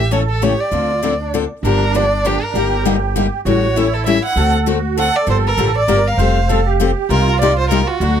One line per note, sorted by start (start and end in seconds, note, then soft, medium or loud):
0.00 0.53 A1 medium
0.00 0.12 G4 medium
0.11 0.22 C#3 medium
0.11 0.22 E3 medium
0.11 0.22 A3 medium
0.11 0.22 C#4 medium
0.11 0.43 A4 medium
0.11 0.22 A4 medium
0.11 0.20 C#5 medium
0.29 0.45 A4 medium
0.42 0.52 C#3 medium
0.42 0.52 E3 medium
0.42 0.52 A3 medium
0.42 0.52 C#4 medium
0.42 0.70 G4 medium
0.42 0.53 A4 medium
0.42 0.62 C#5 medium
0.61 1.34 D5 medium
0.71 1.45 D2 medium
0.71 0.91 D3 medium
0.71 0.91 F3 medium
0.71 0.91 C4 medium
0.71 0.91 D4 medium
0.71 1.00 F4 medium
0.71 0.91 A4 medium
1.02 1.13 D3 medium
1.02 1.13 F3 medium
1.02 1.13 C4 medium
1.02 1.13 D4 medium
1.02 1.10 E4 medium
1.02 1.13 A4 medium
1.20 1.48 D4 medium
1.34 1.44 D3 medium
1.34 1.44 F3 medium
1.34 1.44 C4 medium
1.34 1.44 D4 medium
1.34 1.44 A4 medium
1.63 2.36 G1 medium
1.63 1.83 D3 medium
1.63 1.83 F3 medium
1.63 1.83 A#3 medium
1.63 2.57 D4 medium
1.63 1.83 D4 medium
1.63 1.84 G4 medium
1.63 1.97 A#4 medium
1.94 2.04 D3 medium
1.94 2.05 F3 medium
1.94 2.05 A#3 medium
1.94 2.05 D4 medium
1.94 2.05 G4 medium
1.94 2.28 D5 medium
2.25 2.35 D3 medium
2.25 2.35 F3 medium
2.25 2.35 A#3 medium
2.25 2.35 D4 medium
2.25 2.35 G4 loud
2.25 2.44 G4 medium
2.43 2.85 A#4 medium
2.54 3.27 G1 medium
2.54 2.74 D3 medium
2.54 2.74 G3 medium
2.54 2.74 A#3 medium
2.54 2.74 D#4 medium
2.54 3.41 G4 medium
2.54 2.74 G4 medium
2.85 2.95 D3 medium
2.85 2.95 G3 medium
2.85 2.96 A#3 medium
2.85 2.96 D#4 medium
2.85 2.96 G4 medium
3.16 3.26 D3 medium
3.16 3.26 G3 medium
3.16 3.26 A#3 medium
3.16 3.26 D#4 loud
3.16 3.26 G4 loud
3.45 4.18 A1 medium
3.45 3.65 E3 medium
3.45 3.65 G3 medium
3.45 3.65 C#4 medium
3.45 3.65 E4 medium
3.45 3.76 F#4 medium
3.45 3.65 A4 medium
3.45 3.95 C#5 medium
3.75 3.86 E3 medium
3.75 3.86 G3 medium
3.75 3.87 C#4 medium
3.75 4.38 E4 medium
3.75 3.87 E4 loud
3.75 3.87 A4 medium
3.93 4.06 A4 medium
4.06 4.17 E3 medium
4.06 4.17 G3 medium
4.06 4.17 C#4 medium
4.06 4.17 E4 medium
4.06 4.17 A4 loud
4.06 4.22 E5 loud
4.25 4.52 F#5 medium
4.36 5.09 D2 medium
4.36 4.55 D3 medium
4.36 4.56 A3 medium
4.36 4.56 C4 medium
4.36 4.56 F#4 medium
4.36 4.67 A4 medium
4.36 4.56 A4 medium
4.66 4.77 D3 medium
4.66 4.77 A3 medium
4.66 4.77 C4 medium
4.66 4.98 F#4 medium
4.66 4.77 F#4 medium
4.66 4.77 A4 medium
4.96 5.08 D3 medium
4.96 5.08 A3 medium
4.96 5.08 C4 medium
4.96 5.08 F#4 medium
4.96 5.25 A4 medium
4.96 5.08 A4 medium
4.96 5.18 F#5 loud
5.16 5.28 D5 medium
5.26 5.51 G1 medium
5.26 5.46 D3 medium
5.26 5.46 F3 medium
5.26 5.46 A#3 medium
5.26 5.46 D4 medium
5.26 5.47 G4 medium
5.26 5.83 A4 loud
5.26 5.37 C5 medium
5.47 5.74 A#4 medium
5.58 5.83 A1 medium
5.58 5.68 D3 medium
5.58 5.68 F3 medium
5.58 5.68 A#3 medium
5.58 5.68 D4 medium
5.58 5.69 G4 medium
5.78 6.09 D5 medium
5.88 6.14 G1 medium
5.88 5.98 D3 medium
5.88 5.99 F3 medium
5.88 5.99 A#3 medium
5.88 5.99 D4 medium
5.88 5.99 G4 medium
5.88 6.19 A#4 loud
6.07 6.67 F5 medium
6.17 6.91 F1 medium
6.17 6.37 F3 medium
6.17 6.38 G3 medium
6.17 6.38 C4 medium
6.17 6.38 G4 medium
6.17 6.38 A4 medium
6.17 6.49 C5 loud
6.48 6.59 F3 medium
6.48 6.59 G3 medium
6.48 6.60 C4 medium
6.48 6.60 G4 medium
6.48 6.66 A4 loud
6.48 6.60 A4 medium
6.66 7.10 G4 medium
6.80 6.90 F3 medium
6.80 6.90 G3 medium
6.80 6.90 C4 medium
6.80 6.90 G4 loud
6.80 6.90 A4 loud
7.09 7.82 C2 medium
7.09 7.29 C3 medium
7.09 7.29 G3 medium
7.09 7.29 A#3 medium
7.09 7.29 D#4 medium
7.09 8.03 F4 loud
7.09 7.29 G4 medium
7.09 7.38 A#4 medium
7.41 7.51 C3 medium
7.41 7.51 G3 medium
7.41 7.51 A#3 medium
7.41 7.51 D#4 loud
7.41 7.52 G4 medium
7.41 7.57 D5 medium
7.58 7.69 C5 medium
7.70 7.81 C3 medium
7.70 7.81 G3 medium
7.70 7.81 A#3 medium
7.70 7.81 D#4 medium
7.70 7.81 G4 loud
7.70 7.89 A#4 medium
7.87 8.20 F#4 medium
8.00 8.20 D2 medium
8.00 8.20 D3 medium
8.00 8.20 F#3 medium
8.00 8.20 A3 medium
8.00 8.20 D4 medium
8.00 8.20 F#4 medium